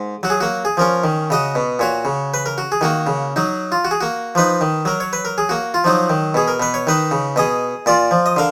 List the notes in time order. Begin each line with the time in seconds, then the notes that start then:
Already playing: G#2 A#3
0.23 F#3 F#4
0.30 G#4
0.41 A#3 F#4
0.65 G#4
0.77 F3 C#4 A#4
1.04 D#3
1.30 C#3 F#4 D#5
1.55 B2
1.79 A#2 F#4 C#5
2.05 C#3
2.34 B4
2.46 A#4
2.58 F#4
2.72 G#4
2.81 D#3 A#3 F#4
3.07 C#3
3.36 F#3 D#4
3.72 F4
3.85 F#4
3.91 G#4
4.01 A#3 F#4
4.35 F3 D#4 B4
4.61 D#3
4.85 F#3 A#4
5.00 C#5
5.13 B4
5.25 A#4
5.38 G#4
5.49 A#3 F#4
5.74 F4
5.84 F3 F#3 D#4
6.10 D#3
6.34 B2 G#4
6.48 A#4
6.60 B2 B4
6.74 C#5
6.87 D#3 D#4 B4
7.11 C#3
7.36 B2 G#4 D#5
7.86 A#2 F4 D5
8.11 F3
8.26 D#5
8.36 D3 A#4 F5